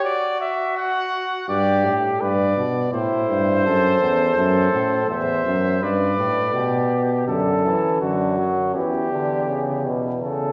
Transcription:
0.04 1.48 F#4 medium
0.04 0.40 D5 loud
0.41 0.76 E5 medium
0.77 1.47 F#5 medium
1.48 1.86 G2 medium
1.48 2.22 G4 medium
1.48 1.95 D5 medium
1.84 2.21 A2 medium
2.21 2.56 G2 medium
2.21 2.67 B4 medium
2.21 2.89 D5 medium
2.56 2.92 B2 medium
2.93 3.28 A2 medium
2.93 3.67 E4 medium
2.93 5.06 C5 medium
3.29 3.66 G2 medium
3.65 3.99 F#2 medium
3.65 4.37 A4 medium
4.00 4.35 E2 loud
4.36 4.72 F#2 loud
4.36 5.08 A4 medium
4.72 5.07 A2 medium
5.08 5.44 E2 medium
5.08 5.84 C5 medium
5.08 5.85 E5 medium
5.45 5.83 F#2 medium
5.81 6.16 G2 medium
5.81 6.54 B4 medium
5.81 7.29 D5 medium
6.17 6.53 A2 medium
6.53 7.26 B2 loud
6.53 7.27 G4 medium
7.27 7.74 F#2 medium
7.27 7.62 D3 medium
7.27 8.00 A4 medium
7.64 8.01 E3 medium
8.01 8.76 F#2 medium
8.01 8.38 D3 medium
8.01 8.74 F#4 medium
8.38 8.77 F#3 medium
8.74 10.52 E2 medium
8.74 9.11 E3 medium
8.74 9.90 G4 medium
9.12 9.50 D3 medium
9.48 9.87 C#3 loud
9.85 10.21 B2 medium
10.21 10.52 C#3 medium
10.21 10.52 A4 medium

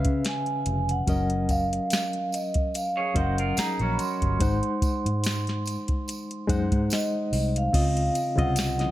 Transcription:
0.00 0.62 C#3 medium
0.00 0.62 C#4 medium
0.00 0.62 B4 medium
0.00 1.10 E5 medium
0.00 0.66 F5 medium
0.05 0.22 C#3 loud
0.05 kick medium
0.05 closed hi-hat medium
0.25 0.92 G#5 medium
0.25 snare medium
0.25 closed hi-hat medium
0.46 closed hi-hat soft
0.66 1.02 F1 loud
0.66 closed hi-hat medium
0.89 1.52 F#5 medium
0.89 closed hi-hat soft
1.07 1.78 F#1 medium
1.07 2.14 F#3 medium
1.07 2.14 C#4 medium
1.07 2.15 A#4 medium
1.07 2.15 D#5 medium
1.07 kick medium
1.07 closed hi-hat medium
1.07 tambourine soft
1.30 closed hi-hat soft
1.49 2.36 F5 medium
1.49 kick medium
1.49 closed hi-hat medium
1.49 tambourine soft
1.73 closed hi-hat soft
1.90 snare loud
1.90 closed hi-hat medium
1.90 tambourine medium
2.13 closed hi-hat soft
2.32 2.72 D#5 medium
2.32 closed hi-hat medium
2.32 tambourine soft
2.54 kick medium
2.54 closed hi-hat medium
2.74 3.18 F5 loud
2.74 closed hi-hat medium
2.74 tambourine medium
2.97 3.15 G#4 medium
2.97 3.15 C#5 medium
3.14 3.51 F#1 medium
3.14 3.94 F#3 medium
3.14 3.94 C#4 medium
3.14 3.38 F#4 medium
3.14 3.95 A#4 medium
3.14 3.37 C5 medium
3.14 3.95 D#5 medium
3.14 3.59 F#5 medium
3.14 kick medium
3.14 closed hi-hat medium
3.38 3.57 F4 medium
3.38 3.57 A#4 medium
3.38 closed hi-hat medium
3.57 3.79 D#4 medium
3.57 3.79 G#4 medium
3.57 3.94 A#5 loud
3.57 muted fingered electric bass stroke medium
3.57 snare loud
3.57 closed hi-hat medium
3.57 tambourine medium
3.79 3.96 A#1 medium
3.79 4.39 C#4 medium
3.79 4.38 F#4 medium
3.79 closed hi-hat soft
3.93 3.99 B5 medium
3.99 7.28 C6 medium
3.99 closed hi-hat medium
3.99 tambourine soft
4.22 4.38 G1 medium
4.22 kick medium
4.22 closed hi-hat medium
4.39 4.60 G#1 loud
4.39 5.46 G#3 medium
4.39 5.47 D#4 medium
4.39 5.47 C5 medium
4.39 5.48 F#5 medium
4.39 kick loud
4.39 closed hi-hat medium
4.39 tambourine soft
4.63 closed hi-hat soft
4.82 muted fingered electric bass stroke soft
4.82 kick medium
4.82 closed hi-hat medium
4.82 tambourine soft
5.06 5.76 G#2 medium
5.06 closed hi-hat soft
5.24 snare loud
5.24 closed hi-hat loud
5.24 tambourine medium
5.47 snare soft
5.47 closed hi-hat soft
5.66 closed hi-hat medium
5.66 tambourine soft
5.88 kick medium
5.88 closed hi-hat soft
6.08 closed hi-hat medium
6.08 tambourine soft
6.31 closed hi-hat soft
6.47 6.68 F#2 medium
6.47 7.27 G#3 medium
6.47 7.27 D#4 medium
6.47 7.28 C5 medium
6.47 7.28 F#5 medium
6.47 kick medium
6.47 closed hi-hat medium
6.47 tambourine soft
6.72 6.88 G#2 medium
6.72 kick medium
6.72 closed hi-hat medium
6.90 7.57 D#5 loud
6.90 snare loud
6.90 closed hi-hat medium
6.90 tambourine medium
7.32 7.67 C2 loud
7.32 open hi-hat medium
7.32 tambourine soft
7.56 8.41 F5 loud
7.56 closed hi-hat medium
7.72 8.09 C#2 loud
7.72 8.12 C#3 medium
7.72 8.12 C4 medium
7.72 8.13 F4 medium
7.72 8.14 D#5 medium
7.72 kick loud
7.72 closed hi-hat medium
7.72 crash medium
7.72 tambourine soft
7.97 closed hi-hat medium
8.15 closed hi-hat medium
8.15 tambourine soft
8.36 8.89 C2 medium
8.36 8.61 C#3 medium
8.36 8.62 C4 medium
8.36 8.62 F4 medium
8.36 8.63 D#5 medium
8.36 kick loud
8.36 closed hi-hat medium
8.40 8.91 F#5 loud
8.56 snare loud
8.56 closed hi-hat loud
8.56 tambourine medium
8.78 8.91 C3 medium
8.78 8.91 C#3 medium
8.78 8.85 E4 soft
8.78 8.91 D#5 medium
8.78 snare soft
8.78 closed hi-hat soft
8.86 8.91 F3 medium

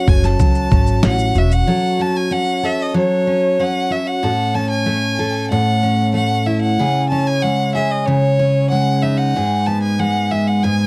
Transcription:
0.00 0.39 F#3 medium
0.00 0.71 C#4 medium
0.00 1.35 F#4 medium
0.07 0.34 F#1 medium
0.07 1.68 A4 medium
0.07 0.26 G#5 loud
0.07 kick loud
0.07 shaker medium
0.24 1.05 A5 medium
0.24 snare soft
0.24 shaker soft
0.39 0.66 C#2 medium
0.39 1.67 F#3 medium
0.39 kick medium
0.39 shaker medium
0.55 shaker medium
0.71 0.98 G#1 medium
0.71 1.03 C#4 medium
0.71 kick medium
0.71 shaker soft
0.87 shaker soft
1.03 1.30 A1 loud
1.03 1.99 C#4 medium
1.03 1.40 F#5 loud
1.03 snare loud
1.03 shaker medium
1.19 shaker medium
1.35 1.62 E1 medium
1.35 3.90 F#4 medium
1.35 1.54 E5 medium
1.35 shaker soft
1.52 2.03 F#5 loud
1.52 shaker medium
1.67 2.93 F#3 medium
1.67 2.63 A4 medium
1.99 2.31 C#4 medium
1.99 2.18 A5 loud
2.17 2.34 G#5 loud
2.31 3.27 C#4 medium
2.31 2.67 F#5 loud
2.63 4.23 A4 medium
2.63 2.84 E5 loud
2.82 2.97 D#5 medium
2.94 4.29 F#3 medium
2.94 3.62 C#5 loud
3.27 3.59 C#4 medium
3.59 4.55 C#4 medium
3.59 3.93 F#5 loud
3.90 4.30 F#4 medium
3.90 4.09 E5 loud
4.08 4.56 F#5 loud
4.23 5.50 A2 medium
4.23 5.18 A4 medium
4.55 5.82 C#4 medium
4.55 4.70 A5 loud
4.70 5.47 G#5 loud
4.86 6.13 A3 medium
5.19 6.79 A4 medium
5.51 6.79 A2 medium
5.51 6.11 F#5 loud
5.83 7.11 C#4 medium
6.14 6.85 A3 medium
6.14 6.48 F#5 loud
6.46 9.03 E4 medium
6.46 6.61 E5 loud
6.62 7.07 F#5 loud
6.79 8.06 C#3 medium
6.79 7.74 G#4 medium
7.10 8.38 C#4 medium
7.10 7.28 A5 medium
7.27 7.44 G#5 loud
7.42 8.71 G#3 medium
7.42 7.74 F#5 loud
7.75 9.36 G#4 medium
7.75 7.93 E5 loud
7.91 8.07 D#5 medium
8.06 9.35 C#3 medium
8.06 8.70 C#5 loud
8.39 9.42 C#4 medium
8.70 9.99 G#3 medium
8.70 9.04 F#5 loud
9.02 10.87 D#4 medium
9.02 9.19 E5 medium
9.18 9.68 F#5 loud
9.36 10.63 G#2 medium
9.36 10.30 G#4 medium
9.66 10.87 B3 medium
9.66 9.82 A5 medium
9.83 10.01 G#5 medium
9.99 10.87 G#3 medium
9.99 10.33 F#5 loud
10.31 10.87 G#4 medium
10.31 10.49 E5 medium
10.47 10.65 F#5 medium
10.64 10.87 G#2 medium
10.64 10.87 G#5 loud

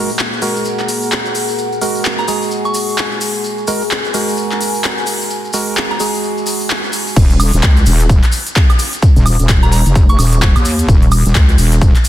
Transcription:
0.00 0.11 G#3 medium
0.00 7.12 A#3 medium
0.00 0.11 F#4 medium
0.00 7.12 G#4 medium
0.00 0.11 A#4 loud
0.00 3.41 F#5 medium
0.09 maracas soft
0.19 clap loud
0.19 maracas soft
0.33 maracas soft
0.42 1.79 G#3 medium
0.42 1.79 F#4 medium
0.42 1.79 A#4 medium
0.42 open hi-hat loud
0.42 maracas medium
0.56 maracas soft
0.65 maracas soft
0.79 clap soft
0.79 maracas soft
0.89 open hi-hat loud
0.89 maracas medium
1.02 maracas soft
1.12 clap loud
1.12 maracas soft
1.26 maracas soft
1.35 open hi-hat medium
1.35 maracas medium
1.49 maracas soft
1.58 maracas soft
1.72 maracas soft
1.82 2.26 G#3 medium
1.82 2.26 F#4 medium
1.82 2.26 A#4 medium
1.82 open hi-hat medium
1.82 maracas medium
1.95 maracas soft
2.05 clap loud
2.05 maracas soft
2.18 2.25 A#5 medium
2.18 maracas soft
2.28 3.65 G#3 medium
2.28 3.65 F#4 medium
2.28 3.65 G#4 medium
2.28 2.37 A#5 medium
2.28 open hi-hat medium
2.28 maracas medium
2.42 maracas soft
2.51 maracas soft
2.65 2.98 C#6 medium
2.65 maracas soft
2.74 open hi-hat medium
2.74 maracas medium
2.88 maracas soft
2.97 clap loud
2.97 maracas soft
3.11 maracas soft
3.21 open hi-hat medium
3.21 maracas medium
3.34 maracas soft
3.44 7.13 G#5 medium
3.44 maracas soft
3.58 maracas soft
3.67 3.83 G#3 medium
3.67 3.83 F#4 medium
3.67 3.83 A#4 loud
3.67 open hi-hat medium
3.67 maracas medium
3.81 maracas soft
3.91 clap loud
3.91 maracas soft
4.05 maracas soft
4.14 5.51 G#3 medium
4.14 5.51 F#4 medium
4.14 5.51 A#4 medium
4.14 open hi-hat medium
4.14 maracas medium
4.28 maracas soft
4.37 maracas soft
4.51 clap soft
4.51 maracas soft
4.61 open hi-hat medium
4.61 maracas medium
4.74 maracas soft
4.83 clap loud
4.83 maracas soft
4.98 maracas soft
5.06 open hi-hat medium
5.06 maracas medium
5.21 maracas soft
5.30 maracas soft
5.45 maracas soft
5.53 5.98 G#3 medium
5.53 5.98 F#4 medium
5.53 5.98 A#4 medium
5.53 open hi-hat medium
5.53 maracas medium
5.67 maracas soft
5.77 clap loud
5.77 maracas soft
5.90 5.97 A#5 medium
5.90 maracas soft
6.00 7.15 G#3 medium
6.00 7.15 F#4 medium
6.00 7.15 G#4 medium
6.00 6.09 A#5 medium
6.00 open hi-hat loud
6.00 maracas medium
6.14 maracas soft
6.23 maracas soft
6.38 maracas soft
6.46 open hi-hat medium
6.46 maracas medium
6.60 maracas soft
6.69 clap loud
6.69 maracas soft
6.84 maracas soft
6.93 open hi-hat medium
6.93 maracas medium
7.07 maracas soft
7.16 7.51 D#1 medium
7.16 kick loud
7.16 crash loud
7.16 maracas medium
7.30 closed hi-hat soft
7.30 maracas soft
7.40 open hi-hat loud
7.40 high woodblock medium
7.40 maracas loud
7.53 7.61 D#1 medium
7.53 closed hi-hat medium
7.53 maracas soft
7.62 7.85 C#2 loud
7.62 kick loud
7.62 clap loud
7.62 maracas medium
7.76 closed hi-hat soft
7.76 maracas soft
7.86 8.21 D#1 medium
7.86 open hi-hat loud
7.86 maracas medium
8.00 closed hi-hat medium
8.00 maracas soft
8.09 kick loud
8.09 maracas soft
8.23 clap soft
8.23 closed hi-hat medium
8.23 maracas soft
8.32 open hi-hat loud
8.32 maracas medium
8.47 closed hi-hat medium
8.47 maracas soft
8.56 kick loud
8.56 clap loud
8.56 maracas medium
8.70 closed hi-hat medium
8.70 high woodblock medium
8.70 maracas soft
8.79 open hi-hat loud
8.79 maracas medium
8.93 closed hi-hat medium
8.93 maracas soft
9.02 kick loud
9.02 maracas medium
9.16 9.37 D#1 loud
9.16 closed hi-hat soft
9.16 maracas soft
9.26 open hi-hat loud
9.26 high woodblock medium
9.26 maracas loud
9.40 9.84 D#1 medium
9.40 closed hi-hat medium
9.40 maracas soft
9.49 kick loud
9.49 clap loud
9.49 maracas medium
9.62 9.69 A#5 medium
9.62 closed hi-hat soft
9.62 maracas soft
9.72 9.81 A#5 medium
9.72 open hi-hat loud
9.72 maracas medium
9.86 10.17 F1 loud
9.86 closed hi-hat medium
9.86 maracas soft
9.95 kick loud
9.95 maracas medium
10.09 10.42 C#6 medium
10.09 closed hi-hat medium
10.09 maracas soft
10.19 10.54 D#1 loud
10.19 open hi-hat loud
10.19 high woodblock medium
10.19 maracas loud
10.32 closed hi-hat medium
10.32 maracas soft
10.42 kick loud
10.42 clap loud
10.42 maracas medium
10.56 10.87 D#2 medium
10.56 closed hi-hat medium
10.56 high woodblock medium
10.56 maracas soft
10.65 open hi-hat loud
10.65 maracas medium
10.79 closed hi-hat medium
10.79 maracas soft
10.89 11.23 D#1 loud
10.89 kick loud
10.89 maracas medium
11.02 closed hi-hat soft
11.02 maracas soft
11.12 open hi-hat loud
11.12 high woodblock medium
11.12 maracas medium
11.26 11.34 D#1 loud
11.26 closed hi-hat medium
11.26 maracas soft
11.35 11.57 C#2 loud
11.35 kick loud
11.35 clap loud
11.35 maracas soft
11.49 closed hi-hat soft
11.49 maracas soft
11.58 11.93 D#1 loud
11.58 open hi-hat loud
11.58 maracas medium
11.72 closed hi-hat medium
11.72 maracas soft
11.82 kick loud
11.82 maracas medium
11.95 clap soft
11.95 closed hi-hat medium
11.95 maracas soft
12.04 open hi-hat loud
12.04 maracas medium

